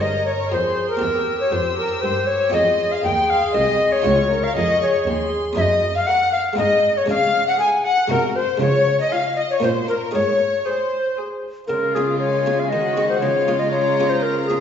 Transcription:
Already playing: F4 G#4
0.00 G2 A#4 D#5 A#5
0.25 C#5
0.50 F2 G#4 C5 C6
0.90 A#4
0.97 C4 G4
1.01 E2 G4 E6
1.40 C#5
1.52 F2 C5
1.77 A#4
2.02 G2 C5
2.27 C#5
2.50 C4 F4 G#4 D#5 C6
2.54 F2
2.92 F5
3.04 D#2 G5 C6
3.30 F5
3.54 C2 D#5
3.92 C#5
4.02 C#2 C#4 F4 G#4 C#6
4.06 C#2
4.31 A#4
4.44 F5
4.56 F2 G#4 D#5 C#6
4.81 C#5
5.06 D#2 G#4 C6
5.53 F#2 C#4 D#4 A#4 D#5 E5
5.57 F#2
5.61 D#5
5.95 F5
6.07 A#4 F#5 C#6
6.32 F5
6.53 G#3 C4 D#4 C6
6.58 G#2 G#4 D#5
6.97 C#5
7.06 C#3 G#3 C#4 G#4 F5
7.10 C#3
7.48 F#5
7.59 G#4 G#5
7.84 F#5
8.08 C3 G#3 D#4 F#4 A#4 G#5
8.12 C3
8.36 C5
8.57 C#3 G#3 C#4 F4 C#5
8.62 C#3 C#5
9.00 D#5
9.10 F4 F5 G#5
9.36 D#5
9.51 C#5
9.60 A#2 A#3 C#4 F4 C5 C#6
9.64 A#2 C5
9.88 A#4
10.11 G#2 D#4 G#4 C#5
10.66 G#4 C5 D#6
11.17 G#4 D#6
11.67 C#3 F4 A#4
11.72 G#3
11.95 C#4 F4 G#4
12.19 C#5 G#5
12.46 C#4 F4 G#4
12.59 F5
12.69 D#3 F#4 D#5 F#5
12.97 C4 F#4 G#4
13.09 C5
13.20 C#3 F4 C#5 F5
13.48 C#4 F4 G#4
13.59 D#5
13.71 C#5 A#5
14.00 C#4 F4 G#4
14.10 C5
14.23 A#4
14.47 C#4 F4 G#4
14.51 G#4

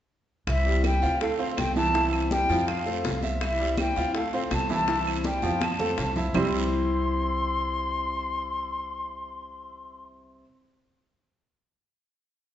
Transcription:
0.47 C2 C3 E3 G3 C4 E4 E5, high bongo, high conga, long guiro, claves
0.66 G3 G4, high conga
0.84 E3 G3 C4 E4 G5, high bongo, high conga, short guiro, claves
1.02 D2 E3 G3 C4 E4 F4 F5, high conga, short guiro
1.21 A3 A4 F5, muted steel-string acoustic guitar stroke, high bongo, high conga, long guiro
1.38 A3 C4 F4 C5 F5, high conga
1.57 C2 D3 A3 C4 F4 G5, high bongo, low bongo, high conga, short guiro, claves
1.76 E3 E4 A5, high conga, short guiro
1.94 C3 E3 G3 C4 E4, high bongo, high conga, long guiro
2.13 high bongo, high conga, claves
2.31 E3 G3 C4 E4 G4 G5, high bongo, high conga, short guiro
2.49 F2 E3 F3 G3 C4 E4 F4, high bongo, high conga, short guiro
2.68 F5, muted steel-string acoustic guitar stroke, high bongo, high conga, long guiro, claves
2.86 F3 A3 C4 F4 A4, high bongo, high conga
3.04 C2 F3 A3 C4 F4, high bongo, low bongo, high conga, short guiro
3.23 E5, high conga, short guiro
3.41 C3 E3 G3 C4 E4 E5, high bongo, high conga, long guiro, claves
3.60 G3 G4, high conga
3.77 E3 G3 C4 E4 G5, high bongo, high conga, short guiro, claves
3.96 D2 E3 G3 C4 E4 F4 F5, high conga, short guiro
4.15 A3 A4 F5, muted steel-string acoustic guitar stroke, high bongo, high conga
4.33 A3 C4 F4 C5 F5, high conga
4.51 C2 D3 A3 C4 F4 A5, high bongo, low bongo, high conga, short guiro, claves
4.69 E3 E4 A5, high conga, short guiro
4.88 C3 E3 G3 C4 E4, high bongo, high conga, long guiro
5.06 high bongo, high conga, claves
5.24 E3 G3 C4 E4 G4 G5, high bongo, high conga, short guiro
5.42 F2 E3 F3 G3 C4 E4 F4, high bongo, high conga, short guiro
5.61 A5, muted steel-string acoustic guitar stroke, high bongo, high conga, long guiro, claves
5.79 F3 A3 C4 F4 A4, high bongo, low conga
5.98 C2 F3 A3 C4 F4, high bongo, low bongo, short guiro
6.16 E4 E5, low conga, short guiro
6.34 C2 C3 E3 G3 C4 E4 G4 C5 C6, low bongo, low conga, long guiro, claves
6.38 E4

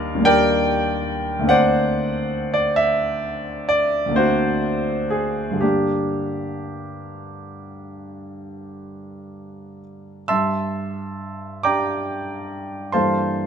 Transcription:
Already playing: D#2 G3 A#3 D4 A#4 D5 D#5 F5
0.15 D#2 G3
0.20 A#3 D4
0.25 A#4 D5 G5
1.39 D2 D3
1.44 A#3 C4
1.49 D4 C5 D5 F#5
2.54 D5
2.76 E5
3.69 D5
4.06 D2 D3
4.11 A#3 C4
4.16 D4 F#4 C5
5.10 G#4
5.50 G2 D3
5.55 G3
5.61 A#3 D4 G4
10.28 G2 E5 A5 C6 E6
11.63 D4 G4 D5 G5 A#5 D6
12.92 G2 E3 A#3 D4 A4 C5 F5 A5 C6

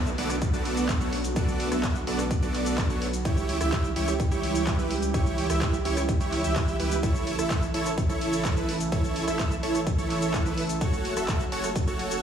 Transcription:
Already playing: B1 D3 F#3 A3 B3 F#4, downlifter
0.06 cabasa
0.18 B1 B3 D4 F#4 A4 D5, open hi-hat
0.30 cross-stick, closed hi-hat, cabasa
0.42 kick, closed hi-hat, cabasa
0.53 B1 B3 D4 F#4 A4 D5, cabasa
0.65 open hi-hat
0.77 closed hi-hat, cabasa
0.89 kick, clap, closed hi-hat, cabasa
1.01 B1 B3 D4 F#4 A4 C#5, cabasa
1.13 open hi-hat
1.24 closed hi-hat, cabasa
1.36 B1 B3 D4 F#4 A4 D5, kick, closed hi-hat, cabasa
1.48 cabasa
1.60 open hi-hat
1.72 B1 B3 D4 F#4 A4 E5, cross-stick, closed hi-hat, cabasa
1.83 kick, clap, closed hi-hat, cabasa
1.95 cabasa
2.07 B1 B3 D4 F#4 A4 D5, open hi-hat
2.19 cross-stick, closed hi-hat, cabasa
2.31 kick, closed hi-hat, cabasa
2.42 B1 B3 D4 F#4 A4 D5, cabasa
2.54 clap, open hi-hat
2.66 closed hi-hat, cabasa
2.78 kick, clap, closed hi-hat, cabasa
2.90 B1 B3 D4 F#4 A4 C#5, cabasa
3.02 open hi-hat
3.14 closed hi-hat, cabasa
3.25 C#2 C#3 E3 G3 E4 G4 C#5, kick, closed hi-hat, cabasa
3.37 cabasa
3.49 open hi-hat
3.61 C#2 E4 G4 E5, cross-stick, closed hi-hat, cabasa
3.72 kick, clap, closed hi-hat, cabasa
3.84 cabasa
3.96 C#2 E4 G4 C#5, open hi-hat
4.08 cross-stick, closed hi-hat, cabasa
4.20 kick, closed hi-hat, cabasa
4.31 C#2 E4 G4 C#5, cabasa
4.43 open hi-hat
4.55 closed hi-hat, cabasa
4.67 kick, clap, closed hi-hat, cabasa
4.79 C#2 E4 G4 B4, cabasa
4.91 open hi-hat
5.02 closed hi-hat, cabasa
5.14 C#2 E4 G4 C#5, kick, closed hi-hat, cabasa
5.26 cabasa
5.38 open hi-hat
5.50 C#2 E4 G4 E5, cross-stick, closed hi-hat, cabasa
5.61 kick, clap, closed hi-hat, cabasa
5.73 cabasa
5.85 C#2 E4 G4 C#5, open hi-hat
5.97 cross-stick, closed hi-hat, cabasa
6.09 kick, closed hi-hat, cabasa
6.21 C#2 E4 G4 C#5, closed hi-hat, cabasa
6.32 clap, open hi-hat
6.44 C#2 E4 G4 E5, closed hi-hat, cabasa
6.56 kick, clap, closed hi-hat, cabasa
6.68 cabasa
6.79 C#2 E4 G4 B4, open hi-hat
6.92 closed hi-hat, cabasa
7.03 A1 C#3 E3 A3 E4 A4 C#5, kick, closed hi-hat, cabasa
7.15 cabasa
7.27 open hi-hat
7.39 A1 E4 A4 E5, cross-stick, closed hi-hat, cabasa
7.50 kick, clap, closed hi-hat, cabasa
7.62 cabasa
7.74 A1 E4 A4 C#5, open hi-hat
7.86 cross-stick, closed hi-hat, cabasa
7.98 kick, closed hi-hat, cabasa
8.09 A1 E4 A4 C#5, cabasa
8.21 open hi-hat
8.33 closed hi-hat, cabasa
8.45 kick, clap, closed hi-hat, cabasa
8.57 A1 E4 A4 B4, cabasa
8.69 open hi-hat
8.81 closed hi-hat, cabasa
8.92 A1 E4 A4 C#5, kick, closed hi-hat, cabasa
9.04 cabasa
9.16 open hi-hat
9.27 A1 E4 A4 E5, cross-stick, closed hi-hat, cabasa
9.39 kick, clap, closed hi-hat, cabasa
9.51 cabasa
9.63 A1 E4 A4 C#5, open hi-hat
9.75 cross-stick, closed hi-hat, cabasa
9.87 kick, closed hi-hat, cabasa
9.98 A1 E4 A4 C#5, cabasa
10.10 clap, open hi-hat
10.22 closed hi-hat, cabasa
10.34 kick, clap, closed hi-hat, cabasa
10.46 A1 E4 A4 B4, cabasa
10.58 open hi-hat
10.69 closed hi-hat, cabasa
10.81 F#1 C#3 F#3 F#4 A4 C#5, kick, closed hi-hat, cabasa
10.93 cabasa
11.05 open hi-hat
11.17 F#1 F#4 A4 E5, cross-stick, closed hi-hat, cabasa
11.28 kick, clap, closed hi-hat, cabasa
11.40 cabasa
11.52 F#1 F#4 A4 C#5, open hi-hat
11.64 cross-stick, closed hi-hat, cabasa
11.76 kick, closed hi-hat, cabasa
11.87 F#1 F#4 A4 C#5, cabasa
11.99 open hi-hat
12.11 closed hi-hat, cabasa

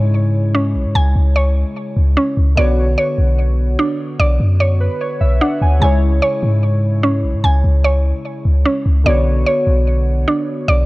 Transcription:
Already playing: G#2 C#3 G#3 E4 C#5 G#5
0.55 C#4
0.75 B1
0.85 G#2
0.95 C#2 G#5
1.16 C#2
1.36 C#5
1.97 C#2
2.17 C#4
2.37 C#2
2.55 B1 D3 B3 F#4 D5
2.61 C#5
2.98 C#5
3.18 B1
3.79 D4
4.20 B1 D5
4.40 F#2
4.60 C#5
4.80 B4
5.01 C#5
5.21 B1 E5
5.41 D4 F#5
5.61 D2 G#5
5.79 C#2 C#3 G#3 E4 G#5
5.84 C#5
6.22 C#5
6.43 G#2
7.03 C#4
7.24 B1
7.34 G#2
7.44 C#2 G#5
7.64 C#2
7.84 C#5
8.45 C#2
8.66 C#4
8.86 C#2
9.04 B1 D3 B3 F#4 D5
9.09 C#5
9.46 C#5
9.67 B1
10.28 D4
10.68 B1 D5

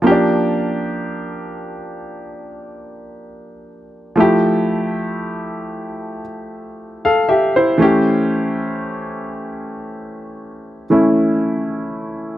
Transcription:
0.02 F3 A#3 C#4
0.07 G4
0.12 D4
4.16 F3 A3 E4
4.20 G4
7.05 A4 F5
7.29 G4 E5
7.56 E4 C5
7.78 E3 A3 C#4
7.82 G4
10.90 E3 A3 C#4 E4

